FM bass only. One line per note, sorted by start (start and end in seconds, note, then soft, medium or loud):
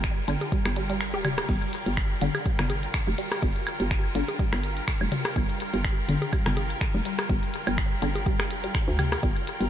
0.00 0.22 G1 loud
0.28 0.36 G1 medium
0.66 1.15 G1 loud
1.14 1.43 D1 loud
1.49 1.57 G1 loud
1.86 2.15 G1 loud
2.21 2.30 G1 medium
2.59 2.88 G1 loud
3.07 3.14 F1 loud
3.43 3.51 G1 loud
3.80 4.09 G1 loud
4.15 4.24 G1 medium
4.53 4.81 G1 loud
5.01 5.08 F1 loud
5.36 5.45 G1 loud
5.74 6.02 G1 loud
6.09 6.17 G1 medium
6.46 6.75 G1 loud
6.95 7.02 F1 loud
7.29 7.38 G1 loud
7.67 7.96 G1 loud
8.02 8.41 G1 medium
8.40 8.68 F1 medium
8.88 9.17 D2 loud
9.23 9.32 G1 loud
9.61 9.70 G1 loud